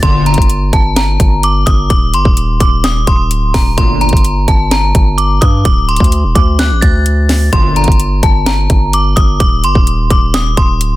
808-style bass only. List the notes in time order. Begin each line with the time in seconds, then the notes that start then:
0.03 G1
0.38 G1
0.73 G1
1.20 G1
1.67 G1
1.90 D#1
2.14 G1
2.25 D#1
2.60 D#1
3.07 D#1
3.31 D1
3.54 D#1
3.78 G1
4.13 G1
4.48 G1
4.95 G1
5.42 G2
5.65 D1
6.00 D2
6.24 D#1
6.35 D2
6.71 A1
6.82 D2
7.53 G1
7.88 G1
8.23 G1
8.70 G1
9.17 G1
9.40 D#1
9.64 G1
9.75 D#1
10.10 D#1
10.57 D#1
10.81 D1